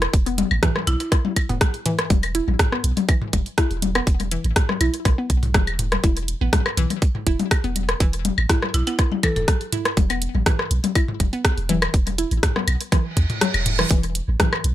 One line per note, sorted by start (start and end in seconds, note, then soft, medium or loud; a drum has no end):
0.02 cross-stick medium
0.02 closed hi-hat soft
0.13 0.44 E1 loud
0.13 kick loud
0.13 closed hi-hat medium
0.26 0.30 B3 medium
0.26 closed hi-hat soft
0.38 closed hi-hat medium
0.38 high tom medium
0.51 0.59 A1 medium
0.51 high woodblock medium
0.63 0.66 E3 loud
0.63 kick loud
0.63 cross-stick loud
0.63 closed hi-hat medium
0.63 mid tom loud
0.76 cross-stick medium
0.76 high tom soft
0.87 0.96 B1 loud
0.87 0.96 E4 medium
0.87 closed hi-hat loud
1.00 1.08 E4 medium
1.00 closed hi-hat soft
1.12 1.14 E4 medium
1.12 kick loud
1.12 cross-stick medium
1.12 closed hi-hat medium
1.25 high tom medium
1.36 kick medium
1.36 closed hi-hat loud
1.36 high woodblock medium
1.49 1.57 E1 loud
1.49 1.53 B3 medium
1.49 closed hi-hat soft
1.49 mid tom medium
1.61 kick loud
1.61 cross-stick loud
1.61 closed hi-hat medium
1.61 high tom soft
1.74 closed hi-hat soft
1.86 1.89 E3 loud
1.86 closed hi-hat loud
1.86 mid tom medium
1.99 cross-stick medium
1.99 closed hi-hat soft
2.10 2.40 E1 loud
2.10 kick loud
2.10 closed hi-hat medium
2.10 high tom medium
2.23 closed hi-hat soft
2.23 high woodblock medium
2.35 2.37 E4 medium
2.35 closed hi-hat medium
2.48 2.55 A1 medium
2.48 high tom soft
2.59 kick loud
2.59 cross-stick loud
2.59 closed hi-hat medium
2.59 mid tom medium
2.72 2.75 B3 medium
2.72 cross-stick medium
2.84 2.92 B1 loud
2.84 closed hi-hat loud
2.97 closed hi-hat soft
2.97 high tom medium
3.09 3.12 E3 loud
3.09 kick loud
3.09 closed hi-hat medium
3.09 high woodblock medium
3.22 mid tom medium
3.33 3.42 E1 loud
3.33 kick medium
3.33 closed hi-hat loud
3.33 high tom soft
3.46 closed hi-hat soft
3.58 3.60 E4 medium
3.58 kick loud
3.58 cross-stick loud
3.58 closed hi-hat medium
3.71 4.00 E1 loud
3.71 closed hi-hat soft
3.82 closed hi-hat loud
3.82 high tom medium
3.95 3.98 B3 medium
3.95 cross-stick medium
3.95 closed hi-hat soft
3.95 high woodblock medium
4.07 4.37 E1 loud
4.07 kick loud
4.07 closed hi-hat medium
4.20 closed hi-hat soft
4.20 high tom soft
4.31 4.35 E3 loud
4.31 closed hi-hat loud
4.44 4.52 A1 medium
4.44 closed hi-hat soft
4.56 kick loud
4.56 cross-stick loud
4.56 closed hi-hat medium
4.56 mid tom medium
4.69 cross-stick medium
4.69 high tom medium
4.81 4.89 B1 loud
4.81 4.83 E4 medium
4.81 closed hi-hat loud
4.81 high woodblock medium
4.94 closed hi-hat soft
5.05 5.14 B1 loud
5.05 kick loud
5.05 cross-stick medium
5.05 closed hi-hat medium
5.05 high tom soft
5.18 5.21 B3 medium
5.30 5.56 B1 medium
5.30 kick medium
5.30 closed hi-hat medium
5.43 closed hi-hat soft
5.43 mid tom medium
5.54 5.97 E1 loud
5.54 5.58 E3 loud
5.54 kick loud
5.54 cross-stick loud
5.54 closed hi-hat medium
5.54 high tom medium
5.67 closed hi-hat soft
5.67 high woodblock medium
5.79 closed hi-hat loud
5.79 mid tom medium
5.92 cross-stick medium
5.92 closed hi-hat soft
5.92 high tom soft
6.04 6.34 E1 loud
6.04 6.06 E4 medium
6.04 kick loud
6.04 closed hi-hat medium
6.04 high tom soft
6.17 closed hi-hat soft
6.28 closed hi-hat medium
6.41 6.49 A1 medium
6.41 6.44 B3 medium
6.53 kick loud
6.53 cross-stick medium
6.53 closed hi-hat medium
6.53 mid tom medium
6.53 high tom medium
6.66 cross-stick medium
6.66 high woodblock medium
6.77 6.86 B1 loud
6.77 6.81 E3 loud
6.77 closed hi-hat medium
6.90 closed hi-hat soft
6.90 high tom soft
7.02 kick loud
7.02 closed hi-hat medium
7.15 mid tom medium
7.27 7.35 E1 loud
7.27 7.29 E4 medium
7.27 kick medium
7.27 closed hi-hat medium
7.39 closed hi-hat soft
7.39 high tom medium
7.51 kick loud
7.51 cross-stick medium
7.51 closed hi-hat medium
7.51 high woodblock medium
7.64 7.94 E1 loud
7.64 7.67 B3 medium
7.64 closed hi-hat soft
7.76 closed hi-hat medium
7.76 high tom soft
7.89 cross-stick medium
7.89 closed hi-hat soft
8.00 8.31 E1 loud
8.00 8.04 E3 loud
8.00 kick loud
8.00 closed hi-hat medium
8.13 closed hi-hat soft
8.25 closed hi-hat medium
8.25 high tom medium
8.38 8.45 A1 medium
8.38 high woodblock medium
8.49 8.52 E4 medium
8.49 kick loud
8.49 cross-stick medium
8.49 closed hi-hat medium
8.49 mid tom medium
8.62 cross-stick medium
8.62 high tom soft
8.74 8.83 B1 loud
8.74 8.82 E4 medium
8.74 closed hi-hat medium
8.87 8.90 B3 medium
8.87 8.95 E4 medium
8.87 closed hi-hat soft
8.99 kick loud
8.99 cross-stick medium
8.99 closed hi-hat medium
9.12 high tom medium
9.23 9.27 E3 loud
9.23 9.32 A4 medium
9.23 kick medium
9.23 closed hi-hat medium
9.23 high woodblock medium
9.36 9.44 E1 loud
9.36 9.44 A4 medium
9.36 closed hi-hat soft
9.36 mid tom medium
9.48 kick loud
9.48 cross-stick medium
9.48 closed hi-hat medium
9.48 high tom soft
9.61 closed hi-hat soft
9.72 9.75 E4 medium
9.72 closed hi-hat loud
9.72 mid tom medium
9.85 cross-stick medium
9.85 closed hi-hat soft
9.97 10.27 E1 loud
9.97 kick loud
9.97 closed hi-hat medium
9.97 high tom medium
10.10 10.13 B3 medium
10.10 closed hi-hat soft
10.10 high woodblock medium
10.22 closed hi-hat medium
10.35 10.42 A1 medium
10.35 high tom soft
10.46 10.50 E3 loud
10.46 kick loud
10.46 cross-stick medium
10.46 closed hi-hat medium
10.46 mid tom medium
10.59 cross-stick medium
10.71 10.79 B1 loud
10.71 closed hi-hat medium
10.84 closed hi-hat soft
10.84 high tom medium
10.95 10.98 E4 medium
10.95 kick loud
10.95 closed hi-hat medium
10.95 high woodblock medium
11.08 mid tom medium
11.20 11.28 E1 loud
11.20 kick medium
11.20 closed hi-hat medium
11.20 high tom soft
11.33 11.36 B3 medium
11.33 closed hi-hat soft
11.45 kick loud
11.45 cross-stick loud
11.45 closed hi-hat medium
11.58 11.87 E1 loud
11.58 closed hi-hat soft
11.69 11.73 E3 loud
11.69 closed hi-hat medium
11.69 high tom medium
11.82 cross-stick medium
11.82 closed hi-hat soft
11.82 high woodblock medium
11.94 12.24 E1 loud
11.94 kick loud
11.94 closed hi-hat medium
12.07 closed hi-hat soft
12.07 high tom soft
12.18 12.21 E4 medium
12.18 closed hi-hat medium
12.31 12.39 A1 medium
12.31 closed hi-hat soft
12.43 kick loud
12.43 cross-stick medium
12.43 closed hi-hat medium
12.43 mid tom loud
12.56 12.59 B3 medium
12.56 cross-stick medium
12.56 high tom medium
12.68 12.76 B1 loud
12.68 closed hi-hat medium
12.68 high woodblock medium
12.81 closed hi-hat soft
12.92 12.96 E3 medium
12.92 kick loud
12.92 cross-stick medium
12.92 closed hi-hat medium
12.92 high tom soft
12.92 reverse cymbal medium
13.17 13.25 E2 loud
13.17 kick medium
13.17 closed hi-hat medium
13.30 closed hi-hat soft
13.30 mid tom medium
13.41 13.47 F#3 medium
13.41 cross-stick loud
13.41 closed hi-hat medium
13.41 high tom medium
13.54 13.84 E1 loud
13.54 closed hi-hat soft
13.54 high woodblock medium
13.66 closed hi-hat medium
13.66 mid tom medium
13.79 13.81 E3 medium
13.79 cross-stick medium
13.79 closed hi-hat soft
13.79 high tom soft
13.90 14.21 E1 loud
13.90 13.94 E3 loud
13.90 kick loud
13.90 closed hi-hat medium
13.90 high tom soft
14.03 closed hi-hat soft
14.15 closed hi-hat medium
14.28 14.36 A1 medium
14.40 14.43 E3 medium
14.40 kick loud
14.40 cross-stick loud
14.40 closed hi-hat medium
14.40 mid tom loud
14.40 high tom medium
14.53 cross-stick medium
14.53 high woodblock medium
14.64 14.73 B1 loud
14.64 closed hi-hat medium